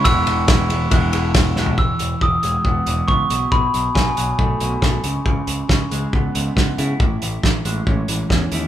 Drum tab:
RD |x-x-x-x-x-x-x---|----------------|----------------|----------------|
HH |----------------|--x---x---x---x-|--x---x---x---x-|--x---x---x---x-|
SD |----o-------o-o-|----------------|----o-------o---|----o-------o---|
FT |---------------o|----------------|----------------|----------------|
BD |o---o---o---o---|o---o---o---o---|o---o---o---o---|o---o---o---o---|

RD |----------------|
HH |--x---x---x---x-|
SD |----o-------o---|
FT |----------------|
BD |o---o---o---o---|